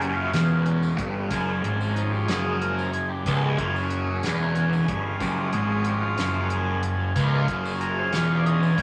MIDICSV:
0, 0, Header, 1, 5, 480
1, 0, Start_track
1, 0, Tempo, 649351
1, 968, Time_signature, 6, 3, 24, 8
1, 6520, End_track
2, 0, Start_track
2, 0, Title_t, "Transistor combo organ"
2, 0, Program_c, 0, 18
2, 0, Note_on_c, 0, 49, 48
2, 0, Note_on_c, 0, 61, 54
2, 0, Note_on_c, 0, 67, 83
2, 113, Note_off_c, 0, 67, 0
2, 116, Note_on_c, 0, 65, 86
2, 245, Note_off_c, 0, 61, 0
2, 245, Note_on_c, 0, 56, 41
2, 254, Note_on_c, 0, 61, 49
2, 457, Note_off_c, 0, 65, 0
2, 462, Note_off_c, 0, 56, 0
2, 464, Note_off_c, 0, 61, 0
2, 473, Note_on_c, 0, 61, 65
2, 703, Note_off_c, 0, 61, 0
2, 944, Note_off_c, 0, 49, 0
2, 950, Note_on_c, 0, 53, 48
2, 951, Note_on_c, 0, 56, 43
2, 957, Note_on_c, 0, 61, 51
2, 1439, Note_on_c, 0, 63, 69
2, 1554, Note_on_c, 0, 67, 84
2, 1568, Note_off_c, 0, 63, 0
2, 1671, Note_on_c, 0, 68, 82
2, 1673, Note_off_c, 0, 67, 0
2, 1903, Note_off_c, 0, 68, 0
2, 1917, Note_off_c, 0, 53, 0
2, 1919, Note_off_c, 0, 56, 0
2, 1922, Note_off_c, 0, 61, 0
2, 1923, Note_on_c, 0, 70, 80
2, 1926, Note_on_c, 0, 53, 46
2, 1928, Note_on_c, 0, 56, 43
2, 1931, Note_on_c, 0, 61, 47
2, 2144, Note_off_c, 0, 53, 0
2, 2145, Note_off_c, 0, 56, 0
2, 2147, Note_off_c, 0, 61, 0
2, 2149, Note_off_c, 0, 70, 0
2, 2171, Note_on_c, 0, 68, 84
2, 2282, Note_off_c, 0, 68, 0
2, 2282, Note_on_c, 0, 67, 92
2, 2411, Note_on_c, 0, 49, 50
2, 2419, Note_on_c, 0, 68, 41
2, 2424, Note_on_c, 0, 61, 50
2, 2620, Note_off_c, 0, 67, 0
2, 2649, Note_on_c, 0, 65, 59
2, 2873, Note_off_c, 0, 65, 0
2, 3604, Note_off_c, 0, 61, 0
2, 3612, Note_on_c, 0, 61, 79
2, 3723, Note_off_c, 0, 61, 0
2, 3730, Note_on_c, 0, 65, 84
2, 3821, Note_off_c, 0, 49, 0
2, 3825, Note_off_c, 0, 68, 0
2, 3842, Note_on_c, 0, 56, 47
2, 3844, Note_on_c, 0, 53, 48
2, 3847, Note_on_c, 0, 67, 84
2, 3854, Note_off_c, 0, 65, 0
2, 3854, Note_on_c, 0, 61, 48
2, 4072, Note_off_c, 0, 67, 0
2, 4088, Note_on_c, 0, 68, 86
2, 4336, Note_off_c, 0, 68, 0
2, 4340, Note_on_c, 0, 67, 86
2, 4447, Note_off_c, 0, 67, 0
2, 4452, Note_on_c, 0, 65, 90
2, 4786, Note_off_c, 0, 65, 0
2, 4818, Note_on_c, 0, 68, 81
2, 5037, Note_off_c, 0, 68, 0
2, 5043, Note_off_c, 0, 53, 0
2, 5047, Note_off_c, 0, 61, 0
2, 5048, Note_off_c, 0, 56, 0
2, 5051, Note_on_c, 0, 53, 44
2, 5055, Note_on_c, 0, 61, 54
2, 5057, Note_on_c, 0, 56, 38
2, 5266, Note_off_c, 0, 53, 0
2, 5268, Note_off_c, 0, 61, 0
2, 5269, Note_off_c, 0, 56, 0
2, 5286, Note_on_c, 0, 65, 52
2, 5286, Note_on_c, 0, 68, 44
2, 5289, Note_on_c, 0, 61, 55
2, 5771, Note_on_c, 0, 70, 83
2, 5893, Note_off_c, 0, 70, 0
2, 5899, Note_on_c, 0, 72, 85
2, 6017, Note_off_c, 0, 72, 0
2, 6023, Note_on_c, 0, 73, 82
2, 6192, Note_on_c, 0, 74, 71
2, 6208, Note_off_c, 0, 73, 0
2, 6246, Note_off_c, 0, 74, 0
2, 6254, Note_on_c, 0, 75, 89
2, 6497, Note_off_c, 0, 75, 0
2, 6520, Note_off_c, 0, 61, 0
2, 6520, Note_off_c, 0, 65, 0
2, 6520, Note_off_c, 0, 68, 0
2, 6520, End_track
3, 0, Start_track
3, 0, Title_t, "Distorted electric guitar"
3, 0, Program_c, 1, 30
3, 0, Note_on_c, 1, 42, 93
3, 241, Note_off_c, 1, 42, 0
3, 247, Note_on_c, 1, 40, 97
3, 721, Note_off_c, 1, 40, 0
3, 724, Note_on_c, 1, 43, 90
3, 959, Note_off_c, 1, 43, 0
3, 969, Note_on_c, 1, 42, 86
3, 1202, Note_off_c, 1, 42, 0
3, 1213, Note_on_c, 1, 44, 88
3, 1684, Note_off_c, 1, 44, 0
3, 1690, Note_on_c, 1, 42, 94
3, 2403, Note_off_c, 1, 42, 0
3, 2411, Note_on_c, 1, 37, 83
3, 2644, Note_off_c, 1, 37, 0
3, 2649, Note_on_c, 1, 42, 89
3, 3123, Note_off_c, 1, 42, 0
3, 3135, Note_on_c, 1, 40, 88
3, 3605, Note_off_c, 1, 40, 0
3, 3610, Note_on_c, 1, 43, 90
3, 3843, Note_off_c, 1, 43, 0
3, 3853, Note_on_c, 1, 42, 89
3, 4084, Note_off_c, 1, 42, 0
3, 4095, Note_on_c, 1, 44, 92
3, 4565, Note_off_c, 1, 44, 0
3, 4572, Note_on_c, 1, 42, 92
3, 5283, Note_off_c, 1, 42, 0
3, 5294, Note_on_c, 1, 37, 87
3, 5524, Note_off_c, 1, 37, 0
3, 5535, Note_on_c, 1, 42, 90
3, 6004, Note_off_c, 1, 42, 0
3, 6007, Note_on_c, 1, 40, 100
3, 6479, Note_off_c, 1, 40, 0
3, 6484, Note_on_c, 1, 43, 94
3, 6520, Note_off_c, 1, 43, 0
3, 6520, End_track
4, 0, Start_track
4, 0, Title_t, "Picked electric bass"
4, 0, Program_c, 2, 34
4, 0, Note_on_c, 2, 30, 78
4, 218, Note_off_c, 2, 30, 0
4, 249, Note_on_c, 2, 28, 91
4, 699, Note_off_c, 2, 28, 0
4, 728, Note_on_c, 2, 31, 88
4, 952, Note_off_c, 2, 31, 0
4, 967, Note_on_c, 2, 30, 86
4, 1191, Note_off_c, 2, 30, 0
4, 1208, Note_on_c, 2, 32, 84
4, 1659, Note_off_c, 2, 32, 0
4, 1693, Note_on_c, 2, 30, 87
4, 2382, Note_off_c, 2, 30, 0
4, 2409, Note_on_c, 2, 25, 76
4, 2633, Note_off_c, 2, 25, 0
4, 2650, Note_on_c, 2, 30, 87
4, 3101, Note_off_c, 2, 30, 0
4, 3131, Note_on_c, 2, 28, 86
4, 3581, Note_off_c, 2, 28, 0
4, 3612, Note_on_c, 2, 31, 81
4, 3835, Note_off_c, 2, 31, 0
4, 3849, Note_on_c, 2, 30, 82
4, 4073, Note_off_c, 2, 30, 0
4, 4091, Note_on_c, 2, 32, 92
4, 4541, Note_off_c, 2, 32, 0
4, 4572, Note_on_c, 2, 30, 81
4, 5261, Note_off_c, 2, 30, 0
4, 5293, Note_on_c, 2, 25, 94
4, 5514, Note_off_c, 2, 25, 0
4, 5534, Note_on_c, 2, 30, 93
4, 5981, Note_off_c, 2, 30, 0
4, 6010, Note_on_c, 2, 28, 83
4, 6459, Note_off_c, 2, 28, 0
4, 6490, Note_on_c, 2, 31, 83
4, 6520, Note_off_c, 2, 31, 0
4, 6520, End_track
5, 0, Start_track
5, 0, Title_t, "Drums"
5, 11, Note_on_c, 9, 54, 26
5, 12, Note_on_c, 9, 42, 71
5, 84, Note_off_c, 9, 54, 0
5, 86, Note_off_c, 9, 42, 0
5, 246, Note_on_c, 9, 54, 81
5, 248, Note_on_c, 9, 42, 85
5, 257, Note_on_c, 9, 38, 97
5, 320, Note_off_c, 9, 54, 0
5, 322, Note_off_c, 9, 42, 0
5, 331, Note_off_c, 9, 38, 0
5, 487, Note_on_c, 9, 42, 58
5, 561, Note_off_c, 9, 42, 0
5, 612, Note_on_c, 9, 54, 63
5, 686, Note_off_c, 9, 54, 0
5, 728, Note_on_c, 9, 36, 101
5, 728, Note_on_c, 9, 42, 66
5, 802, Note_off_c, 9, 36, 0
5, 802, Note_off_c, 9, 42, 0
5, 965, Note_on_c, 9, 42, 78
5, 968, Note_on_c, 9, 36, 94
5, 972, Note_on_c, 9, 54, 74
5, 1039, Note_off_c, 9, 42, 0
5, 1042, Note_off_c, 9, 36, 0
5, 1046, Note_off_c, 9, 54, 0
5, 1214, Note_on_c, 9, 42, 62
5, 1288, Note_off_c, 9, 42, 0
5, 1336, Note_on_c, 9, 54, 61
5, 1410, Note_off_c, 9, 54, 0
5, 1451, Note_on_c, 9, 42, 63
5, 1464, Note_on_c, 9, 54, 25
5, 1525, Note_off_c, 9, 42, 0
5, 1538, Note_off_c, 9, 54, 0
5, 1581, Note_on_c, 9, 54, 24
5, 1655, Note_off_c, 9, 54, 0
5, 1688, Note_on_c, 9, 42, 81
5, 1697, Note_on_c, 9, 38, 104
5, 1698, Note_on_c, 9, 54, 77
5, 1762, Note_off_c, 9, 42, 0
5, 1771, Note_off_c, 9, 38, 0
5, 1772, Note_off_c, 9, 54, 0
5, 1933, Note_on_c, 9, 42, 62
5, 2007, Note_off_c, 9, 42, 0
5, 2059, Note_on_c, 9, 54, 58
5, 2133, Note_off_c, 9, 54, 0
5, 2169, Note_on_c, 9, 42, 64
5, 2182, Note_on_c, 9, 54, 23
5, 2243, Note_off_c, 9, 42, 0
5, 2256, Note_off_c, 9, 54, 0
5, 2410, Note_on_c, 9, 42, 87
5, 2411, Note_on_c, 9, 36, 95
5, 2421, Note_on_c, 9, 54, 74
5, 2484, Note_off_c, 9, 42, 0
5, 2485, Note_off_c, 9, 36, 0
5, 2495, Note_off_c, 9, 54, 0
5, 2649, Note_on_c, 9, 36, 94
5, 2649, Note_on_c, 9, 42, 62
5, 2723, Note_off_c, 9, 36, 0
5, 2723, Note_off_c, 9, 42, 0
5, 2778, Note_on_c, 9, 54, 57
5, 2852, Note_off_c, 9, 54, 0
5, 2885, Note_on_c, 9, 42, 64
5, 2901, Note_on_c, 9, 54, 25
5, 2959, Note_off_c, 9, 42, 0
5, 2975, Note_off_c, 9, 54, 0
5, 3128, Note_on_c, 9, 42, 86
5, 3136, Note_on_c, 9, 38, 98
5, 3137, Note_on_c, 9, 54, 79
5, 3201, Note_off_c, 9, 42, 0
5, 3210, Note_off_c, 9, 38, 0
5, 3211, Note_off_c, 9, 54, 0
5, 3366, Note_on_c, 9, 42, 57
5, 3440, Note_off_c, 9, 42, 0
5, 3495, Note_on_c, 9, 54, 59
5, 3569, Note_off_c, 9, 54, 0
5, 3609, Note_on_c, 9, 42, 66
5, 3610, Note_on_c, 9, 36, 99
5, 3683, Note_off_c, 9, 42, 0
5, 3684, Note_off_c, 9, 36, 0
5, 3847, Note_on_c, 9, 42, 86
5, 3848, Note_on_c, 9, 36, 96
5, 3860, Note_on_c, 9, 54, 78
5, 3921, Note_off_c, 9, 42, 0
5, 3922, Note_off_c, 9, 36, 0
5, 3934, Note_off_c, 9, 54, 0
5, 4085, Note_on_c, 9, 42, 66
5, 4159, Note_off_c, 9, 42, 0
5, 4321, Note_on_c, 9, 42, 70
5, 4341, Note_on_c, 9, 54, 28
5, 4395, Note_off_c, 9, 42, 0
5, 4415, Note_off_c, 9, 54, 0
5, 4565, Note_on_c, 9, 42, 84
5, 4574, Note_on_c, 9, 38, 91
5, 4576, Note_on_c, 9, 54, 85
5, 4639, Note_off_c, 9, 42, 0
5, 4648, Note_off_c, 9, 38, 0
5, 4650, Note_off_c, 9, 54, 0
5, 4806, Note_on_c, 9, 42, 65
5, 4880, Note_off_c, 9, 42, 0
5, 5047, Note_on_c, 9, 42, 66
5, 5121, Note_off_c, 9, 42, 0
5, 5291, Note_on_c, 9, 42, 85
5, 5292, Note_on_c, 9, 36, 93
5, 5294, Note_on_c, 9, 54, 83
5, 5365, Note_off_c, 9, 42, 0
5, 5366, Note_off_c, 9, 36, 0
5, 5368, Note_off_c, 9, 54, 0
5, 5530, Note_on_c, 9, 42, 64
5, 5531, Note_on_c, 9, 36, 93
5, 5604, Note_off_c, 9, 42, 0
5, 5605, Note_off_c, 9, 36, 0
5, 5658, Note_on_c, 9, 54, 78
5, 5731, Note_off_c, 9, 54, 0
5, 5772, Note_on_c, 9, 42, 61
5, 5776, Note_on_c, 9, 54, 30
5, 5846, Note_off_c, 9, 42, 0
5, 5850, Note_off_c, 9, 54, 0
5, 6006, Note_on_c, 9, 42, 79
5, 6015, Note_on_c, 9, 38, 96
5, 6015, Note_on_c, 9, 54, 94
5, 6080, Note_off_c, 9, 42, 0
5, 6089, Note_off_c, 9, 38, 0
5, 6089, Note_off_c, 9, 54, 0
5, 6255, Note_on_c, 9, 42, 61
5, 6329, Note_off_c, 9, 42, 0
5, 6378, Note_on_c, 9, 54, 71
5, 6452, Note_off_c, 9, 54, 0
5, 6490, Note_on_c, 9, 36, 98
5, 6490, Note_on_c, 9, 42, 59
5, 6520, Note_off_c, 9, 36, 0
5, 6520, Note_off_c, 9, 42, 0
5, 6520, End_track
0, 0, End_of_file